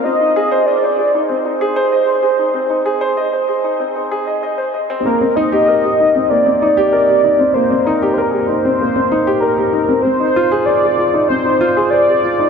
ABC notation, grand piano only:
X:1
M:4/4
L:1/16
Q:1/4=96
K:Ablyd
V:1 name="Grand piano"
C E A c e c A E C E A c e c A E | C E A c e c A E C E A e e c e C | B, C E G B G E C B, C E G B G E C | B, C E G B G E C B, C E G B G E C |
C E F A c A F E C E F A c A F E |]